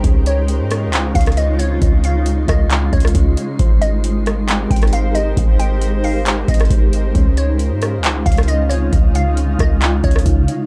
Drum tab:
HH |x-----------x-----------x-----------x-----------x-----------x--x--x--x--x-----------x-----------|x-----------x-----------x-----------x-----------x-----------x---x---x---x-----------x-----------|x-----------x-----------x-----------x-----------x-----------x--x--x--x--x-----------x-----------|x-----------x-----------x-----------o-----------x-----------x--x--x--x--x-----------x-----------|
CP |------------------------------------------------x-----------------------------------------------|------------------------------------------------x-----------------------------------------------|------------------------------------------------x-----------------------------------------------|------------------------------------------------x-----------------------------------------------|
SD |------------------------------------r-----------------------------r-----------------------------|------------------------------------r-----------------------------r-----------------------------|------------------------------------r-----------------------------r-----------------------------|------------------------------------------------------------------r-----------------------------|
BD |o-----------------------------------------------------------o-----------------------------------|o-----------------------------------o-----------------------o-----------o-----------------------|o-----------------------------------------------------------o-----------------------------------|o-----------------------------------------------------------o-----------o-----------------------|

HH |x-----------x-----------x-----------x-----------x-----------x--x--x--x--x-----------x-----------|x-----------x-----------x-----------x-----------x-----------x---x---x---x-----------x-----------|
CP |------------------------------------------------x-----------------------------------------------|------------------------------------------------x-----------------------------------------------|
SD |------------------------------------r-----------------------------r-----------------------------|------------------------------------r-----------------------------r-----------------------------|
BD |o-----------------------------------------------------------o-----------------------------------|o-----------------------------------o-----------------------o-----------o-----------------------|